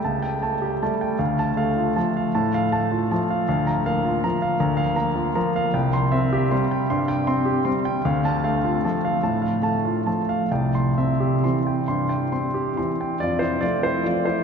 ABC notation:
X:1
M:3/4
L:1/8
Q:1/4=154
K:Dm
V:1 name="Grand piano"
[ga] g a G a g | f a f F a f | a f a F a f | [K:Cmix] f b f F b f |
b f b F b f | g c' e G c' g | c' g c' G c' g | f a f F a f |
a f a F a f | g c' e G c' g | c' g c' G c' g | [Fd] [Ec] [Fd] [Ec] [Fd] [Ec] |]
V:2 name="Grand piano" clef=bass
^C,,2 A,2 [G,A,]2 | D,,2 A,2 [F,A,]2 | A,,2 A,2 [F,A,]2 | [K:Cmix] D,,2 B,2 [F,B,]2 |
D,,2 B,2 [F,B,]2 | C,,2 C2 [G,C]2 | G,,2 C2 [G,C]2 | D,,2 A,2 [F,A,]2 |
A,,2 A,2 [F,A,]2 | C,,2 C2 [E,C]2 | G,,2 C2 [E,C]2 | F,,2 [F,A,]2 [F,A,]2 |]